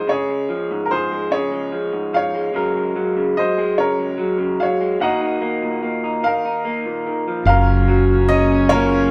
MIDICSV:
0, 0, Header, 1, 7, 480
1, 0, Start_track
1, 0, Tempo, 819672
1, 47, Time_signature, 6, 3, 24, 8
1, 5334, End_track
2, 0, Start_track
2, 0, Title_t, "Grand piano"
2, 0, Program_c, 0, 0
2, 54, Note_on_c, 0, 73, 63
2, 66, Note_on_c, 0, 68, 52
2, 465, Note_off_c, 0, 73, 0
2, 472, Note_off_c, 0, 68, 0
2, 501, Note_on_c, 0, 70, 49
2, 532, Note_on_c, 0, 72, 65
2, 534, Note_off_c, 0, 70, 0
2, 544, Note_on_c, 0, 68, 48
2, 759, Note_off_c, 0, 68, 0
2, 772, Note_on_c, 0, 73, 68
2, 776, Note_off_c, 0, 72, 0
2, 782, Note_on_c, 0, 68, 50
2, 1229, Note_off_c, 0, 68, 0
2, 1255, Note_on_c, 0, 77, 67
2, 1259, Note_off_c, 0, 73, 0
2, 1268, Note_on_c, 0, 73, 55
2, 1951, Note_off_c, 0, 73, 0
2, 1974, Note_on_c, 0, 75, 64
2, 1984, Note_on_c, 0, 72, 51
2, 1990, Note_off_c, 0, 77, 0
2, 2197, Note_off_c, 0, 72, 0
2, 2213, Note_on_c, 0, 73, 63
2, 2216, Note_off_c, 0, 75, 0
2, 2225, Note_on_c, 0, 70, 54
2, 2670, Note_off_c, 0, 70, 0
2, 2693, Note_on_c, 0, 77, 63
2, 2701, Note_off_c, 0, 73, 0
2, 2710, Note_on_c, 0, 73, 48
2, 2920, Note_off_c, 0, 73, 0
2, 2935, Note_off_c, 0, 77, 0
2, 2936, Note_on_c, 0, 78, 61
2, 2949, Note_on_c, 0, 75, 49
2, 3654, Note_on_c, 0, 77, 67
2, 3667, Note_on_c, 0, 70, 50
2, 3866, Note_off_c, 0, 78, 0
2, 3873, Note_off_c, 0, 75, 0
2, 4353, Note_off_c, 0, 70, 0
2, 4362, Note_off_c, 0, 77, 0
2, 4371, Note_on_c, 0, 77, 79
2, 4386, Note_on_c, 0, 70, 54
2, 4852, Note_on_c, 0, 75, 73
2, 4863, Note_off_c, 0, 77, 0
2, 5072, Note_off_c, 0, 75, 0
2, 5073, Note_off_c, 0, 70, 0
2, 5090, Note_on_c, 0, 73, 86
2, 5106, Note_on_c, 0, 70, 61
2, 5334, Note_off_c, 0, 70, 0
2, 5334, Note_off_c, 0, 73, 0
2, 5334, End_track
3, 0, Start_track
3, 0, Title_t, "Cello"
3, 0, Program_c, 1, 42
3, 4368, Note_on_c, 1, 61, 79
3, 5334, Note_off_c, 1, 61, 0
3, 5334, End_track
4, 0, Start_track
4, 0, Title_t, "Steel-string acoustic guitar"
4, 0, Program_c, 2, 25
4, 5093, Note_on_c, 2, 58, 61
4, 5334, Note_off_c, 2, 58, 0
4, 5334, End_track
5, 0, Start_track
5, 0, Title_t, "Clean electric guitar"
5, 0, Program_c, 3, 27
5, 0, Note_on_c, 3, 56, 37
5, 44, Note_on_c, 3, 49, 56
5, 165, Note_off_c, 3, 56, 0
5, 167, Note_on_c, 3, 56, 37
5, 285, Note_off_c, 3, 49, 0
5, 288, Note_on_c, 3, 53, 46
5, 414, Note_on_c, 3, 44, 46
5, 525, Note_off_c, 3, 53, 0
5, 532, Note_on_c, 3, 53, 44
5, 652, Note_off_c, 3, 56, 0
5, 654, Note_on_c, 3, 56, 42
5, 765, Note_on_c, 3, 49, 54
5, 770, Note_off_c, 3, 44, 0
5, 880, Note_off_c, 3, 56, 0
5, 887, Note_on_c, 3, 56, 45
5, 1001, Note_off_c, 3, 53, 0
5, 1005, Note_off_c, 3, 49, 0
5, 1008, Note_on_c, 3, 53, 41
5, 1128, Note_on_c, 3, 44, 44
5, 1243, Note_off_c, 3, 53, 0
5, 1250, Note_on_c, 3, 53, 44
5, 1365, Note_off_c, 3, 56, 0
5, 1374, Note_on_c, 3, 56, 42
5, 1457, Note_off_c, 3, 44, 0
5, 1458, Note_off_c, 3, 53, 0
5, 1487, Note_on_c, 3, 49, 50
5, 1489, Note_off_c, 3, 56, 0
5, 1493, Note_on_c, 3, 54, 43
5, 1495, Note_on_c, 3, 56, 46
5, 1499, Note_on_c, 3, 70, 53
5, 1609, Note_off_c, 3, 56, 0
5, 1617, Note_on_c, 3, 56, 44
5, 1725, Note_off_c, 3, 49, 0
5, 1731, Note_off_c, 3, 54, 0
5, 1733, Note_on_c, 3, 54, 51
5, 1854, Note_on_c, 3, 49, 50
5, 1969, Note_off_c, 3, 49, 0
5, 1973, Note_off_c, 3, 54, 0
5, 1975, Note_on_c, 3, 54, 38
5, 2090, Note_off_c, 3, 56, 0
5, 2098, Note_on_c, 3, 56, 46
5, 2215, Note_on_c, 3, 49, 56
5, 2330, Note_off_c, 3, 56, 0
5, 2339, Note_on_c, 3, 56, 38
5, 2445, Note_off_c, 3, 54, 0
5, 2448, Note_on_c, 3, 54, 49
5, 2449, Note_off_c, 3, 49, 0
5, 2567, Note_on_c, 3, 49, 44
5, 2685, Note_off_c, 3, 49, 0
5, 2691, Note_off_c, 3, 54, 0
5, 2694, Note_on_c, 3, 54, 45
5, 2809, Note_off_c, 3, 56, 0
5, 2816, Note_on_c, 3, 56, 38
5, 2928, Note_off_c, 3, 54, 0
5, 2929, Note_off_c, 3, 56, 0
5, 2931, Note_on_c, 3, 51, 52
5, 2935, Note_on_c, 3, 58, 48
5, 2939, Note_on_c, 3, 63, 49
5, 2942, Note_off_c, 3, 70, 0
5, 2944, Note_on_c, 3, 66, 46
5, 3044, Note_off_c, 3, 63, 0
5, 3051, Note_on_c, 3, 63, 44
5, 3162, Note_off_c, 3, 58, 0
5, 3169, Note_on_c, 3, 58, 51
5, 3294, Note_on_c, 3, 46, 48
5, 3405, Note_off_c, 3, 58, 0
5, 3412, Note_on_c, 3, 58, 41
5, 3527, Note_off_c, 3, 63, 0
5, 3537, Note_on_c, 3, 63, 42
5, 3643, Note_off_c, 3, 51, 0
5, 3648, Note_off_c, 3, 46, 0
5, 3650, Note_on_c, 3, 51, 52
5, 3770, Note_off_c, 3, 63, 0
5, 3779, Note_on_c, 3, 63, 42
5, 3888, Note_off_c, 3, 58, 0
5, 3894, Note_on_c, 3, 58, 40
5, 4016, Note_on_c, 3, 46, 42
5, 4127, Note_off_c, 3, 51, 0
5, 4139, Note_on_c, 3, 51, 44
5, 4251, Note_off_c, 3, 51, 0
5, 4262, Note_on_c, 3, 53, 41
5, 4341, Note_off_c, 3, 58, 0
5, 4343, Note_off_c, 3, 63, 0
5, 4345, Note_off_c, 3, 66, 0
5, 4370, Note_off_c, 3, 46, 0
5, 4373, Note_off_c, 3, 53, 0
5, 4377, Note_on_c, 3, 42, 63
5, 4381, Note_on_c, 3, 65, 60
5, 4616, Note_on_c, 3, 54, 55
5, 4860, Note_on_c, 3, 61, 42
5, 5094, Note_off_c, 3, 65, 0
5, 5097, Note_on_c, 3, 65, 55
5, 5334, Note_off_c, 3, 42, 0
5, 5334, Note_off_c, 3, 54, 0
5, 5334, Note_off_c, 3, 61, 0
5, 5334, Note_off_c, 3, 65, 0
5, 5334, End_track
6, 0, Start_track
6, 0, Title_t, "String section"
6, 0, Program_c, 4, 48
6, 4373, Note_on_c, 4, 58, 53
6, 4377, Note_on_c, 4, 49, 57
6, 4379, Note_on_c, 4, 54, 53
6, 5334, Note_off_c, 4, 49, 0
6, 5334, Note_off_c, 4, 54, 0
6, 5334, Note_off_c, 4, 58, 0
6, 5334, End_track
7, 0, Start_track
7, 0, Title_t, "Fretless electric bass"
7, 0, Program_c, 5, 35
7, 4365, Note_on_c, 5, 30, 64
7, 5334, Note_off_c, 5, 30, 0
7, 5334, End_track
0, 0, End_of_file